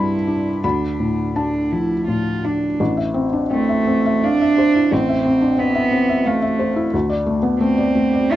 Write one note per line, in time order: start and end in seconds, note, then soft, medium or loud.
0.00 0.60 C2 medium
0.00 0.66 G2 medium
0.00 0.27 D4 medium
0.00 0.63 E4 medium
0.00 0.15 G4 soft
0.00 0.66 G5 medium
0.00 0.66 A5 medium
0.00 0.64 B5 medium
0.00 0.66 C6 loud
0.27 0.63 D4 soft
0.64 2.76 D2 medium
0.64 1.27 D4 medium
0.64 1.32 B5 medium
1.00 1.58 A2 soft
1.35 1.73 D4 medium
1.35 1.94 D4 soft
1.35 2.40 A5 medium
1.72 2.29 F3 soft
1.72 2.07 E4 medium
2.08 2.66 A2 soft
2.08 2.46 F4 medium
2.44 2.80 D4 soft
2.44 2.80 D4 medium
2.80 4.87 A1 medium
2.97 3.25 E5 medium
3.14 3.43 C4 medium
3.33 3.50 D4 medium
3.51 4.25 A3 medium
3.51 3.79 C4 medium
3.69 3.98 E5 medium
3.87 4.16 C4 medium
4.06 4.34 E5 medium
4.24 4.94 D4 loud
4.24 4.41 F5 medium
4.41 4.68 E5 medium
4.58 4.85 C5 medium
4.75 5.02 E4 medium
4.92 6.90 A1 medium
4.92 5.60 C4 medium
5.09 5.35 E5 medium
5.25 5.52 C4 medium
5.41 5.58 D4 medium
5.58 6.27 B3 medium
5.58 5.85 C4 medium
5.75 6.02 E5 medium
5.92 6.19 C4 medium
6.09 6.36 E5 medium
6.26 6.93 A3 medium
6.26 6.43 F5 medium
6.42 6.70 E5 medium
6.59 6.87 C5 medium
6.76 6.93 E4 medium
6.94 8.36 D2 medium
7.09 7.37 D5 medium
7.26 7.54 A3 medium
7.43 7.60 B3 medium
7.59 7.89 A3 medium
7.59 8.34 C4 medium
7.78 8.07 D5 medium
7.95 8.25 A3 medium
8.13 8.36 D5 medium
8.31 8.36 F4 loud
8.31 8.36 E5 medium